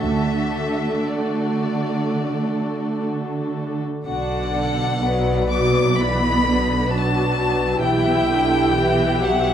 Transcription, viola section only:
0, 0, Header, 1, 2, 480
1, 0, Start_track
1, 0, Key_signature, 2, "major"
1, 0, Tempo, 1018676
1, 8, Time_signature, 4, 2, 24, 8
1, 968, Tempo, 985222
1, 1939, Key_signature, 2, "minor"
1, 2408, Tempo, 930233
1, 4743, End_track
2, 0, Start_track
2, 0, Title_t, "Viola section"
2, 0, Program_c, 0, 48
2, 0, Note_on_c, 0, 57, 52
2, 10, Note_on_c, 0, 62, 35
2, 1820, Note_off_c, 0, 62, 0
2, 1840, Note_off_c, 0, 57, 0
2, 1944, Note_on_c, 0, 50, 45
2, 1945, Note_on_c, 0, 62, 43
2, 2393, Note_off_c, 0, 50, 0
2, 2393, Note_off_c, 0, 62, 0
2, 2411, Note_on_c, 0, 54, 51
2, 2411, Note_on_c, 0, 59, 47
2, 2653, Note_off_c, 0, 54, 0
2, 2659, Note_on_c, 0, 54, 55
2, 2896, Note_off_c, 0, 54, 0
2, 2897, Note_off_c, 0, 59, 0
2, 2902, Note_on_c, 0, 52, 54
2, 2904, Note_on_c, 0, 59, 50
2, 3143, Note_off_c, 0, 52, 0
2, 3146, Note_on_c, 0, 50, 56
2, 3374, Note_off_c, 0, 59, 0
2, 3383, Note_off_c, 0, 50, 0
2, 3385, Note_on_c, 0, 54, 52
2, 3385, Note_on_c, 0, 62, 52
2, 3614, Note_off_c, 0, 62, 0
2, 3620, Note_on_c, 0, 62, 50
2, 3850, Note_off_c, 0, 54, 0
2, 3853, Note_off_c, 0, 62, 0
2, 3859, Note_on_c, 0, 64, 51
2, 3860, Note_on_c, 0, 52, 58
2, 4097, Note_on_c, 0, 50, 61
2, 4099, Note_off_c, 0, 52, 0
2, 4331, Note_off_c, 0, 50, 0
2, 4333, Note_on_c, 0, 67, 63
2, 4334, Note_on_c, 0, 52, 72
2, 4337, Note_off_c, 0, 64, 0
2, 4571, Note_on_c, 0, 54, 66
2, 4572, Note_off_c, 0, 52, 0
2, 4743, Note_off_c, 0, 54, 0
2, 4743, Note_off_c, 0, 67, 0
2, 4743, End_track
0, 0, End_of_file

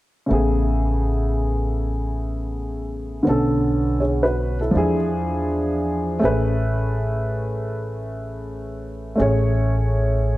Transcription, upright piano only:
0, 0, Header, 1, 2, 480
1, 0, Start_track
1, 0, Key_signature, 3, "major"
1, 0, Tempo, 740741
1, 194, Time_signature, 4, 2, 24, 8
1, 6723, End_track
2, 0, Start_track
2, 0, Title_t, "Upright piano"
2, 0, Program_c, 0, 0
2, 171, Note_on_c, 0, 49, 66
2, 186, Note_on_c, 0, 57, 55
2, 201, Note_on_c, 0, 59, 51
2, 212, Note_on_c, 0, 68, 63
2, 2077, Note_off_c, 0, 49, 0
2, 2085, Note_off_c, 0, 57, 0
2, 2092, Note_off_c, 0, 59, 0
2, 2092, Note_on_c, 0, 50, 64
2, 2097, Note_off_c, 0, 68, 0
2, 2103, Note_on_c, 0, 59, 58
2, 2122, Note_on_c, 0, 61, 52
2, 2132, Note_on_c, 0, 69, 73
2, 2593, Note_on_c, 0, 68, 38
2, 2593, Note_on_c, 0, 73, 51
2, 2594, Note_off_c, 0, 69, 0
2, 2737, Note_off_c, 0, 68, 0
2, 2737, Note_off_c, 0, 73, 0
2, 2741, Note_on_c, 0, 71, 66
2, 2745, Note_on_c, 0, 66, 45
2, 2971, Note_off_c, 0, 71, 0
2, 2973, Note_off_c, 0, 66, 0
2, 2986, Note_on_c, 0, 69, 52
2, 2989, Note_on_c, 0, 64, 39
2, 3044, Note_off_c, 0, 50, 0
2, 3050, Note_off_c, 0, 59, 0
2, 3053, Note_on_c, 0, 53, 66
2, 3059, Note_off_c, 0, 61, 0
2, 3068, Note_off_c, 0, 64, 0
2, 3068, Note_on_c, 0, 62, 59
2, 3078, Note_on_c, 0, 64, 63
2, 3091, Note_on_c, 0, 68, 81
2, 3214, Note_off_c, 0, 69, 0
2, 4004, Note_off_c, 0, 53, 0
2, 4012, Note_off_c, 0, 62, 0
2, 4014, Note_on_c, 0, 57, 66
2, 4017, Note_off_c, 0, 64, 0
2, 4024, Note_off_c, 0, 68, 0
2, 4025, Note_on_c, 0, 61, 53
2, 4036, Note_on_c, 0, 68, 59
2, 4050, Note_on_c, 0, 71, 69
2, 5918, Note_off_c, 0, 57, 0
2, 5924, Note_off_c, 0, 61, 0
2, 5929, Note_off_c, 0, 68, 0
2, 5932, Note_on_c, 0, 57, 61
2, 5936, Note_off_c, 0, 71, 0
2, 5946, Note_on_c, 0, 61, 57
2, 5958, Note_on_c, 0, 68, 57
2, 5971, Note_on_c, 0, 73, 72
2, 6723, Note_off_c, 0, 57, 0
2, 6723, Note_off_c, 0, 61, 0
2, 6723, Note_off_c, 0, 68, 0
2, 6723, Note_off_c, 0, 73, 0
2, 6723, End_track
0, 0, End_of_file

